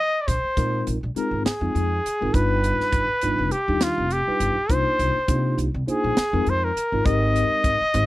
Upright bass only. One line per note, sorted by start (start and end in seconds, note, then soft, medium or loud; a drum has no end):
0.28 0.41 A#1 medium
0.44 muted upright bass stroke soft
0.57 0.81 A#2 medium
0.87 1.00 A#1 medium
1.03 1.14 A#1 medium
1.16 muted upright bass stroke soft
1.31 1.42 G#1 medium
1.45 muted upright bass stroke soft
1.61 1.72 F2 medium
1.75 1.99 F2 medium
2.05 muted upright bass stroke soft
2.22 2.32 G#1 medium
2.34 2.70 G1 loud
2.80 muted upright bass stroke soft
2.92 3.05 G1 medium
3.09 muted upright bass stroke soft
3.23 3.35 G1 medium
3.38 3.49 F1 medium
3.68 3.91 D#2 medium
3.98 4.21 F1 medium
4.28 muted upright bass stroke soft
4.40 4.53 G1 medium
4.56 muted upright bass stroke soft
4.69 4.82 C2 medium
4.99 5.12 C2 medium
5.28 5.52 C3 medium
5.58 5.70 C2 medium
5.74 5.85 C2 medium
5.88 muted upright bass stroke soft
6.04 6.14 A#1 medium
6.17 muted upright bass stroke soft
6.33 6.44 F2 medium
6.46 6.70 F2 medium
6.76 muted upright bass stroke soft
6.92 7.03 G#1 medium
7.06 7.42 G#1 medium
7.64 7.77 G#1 medium
7.81 muted upright bass stroke soft
7.94 8.06 G#1 loud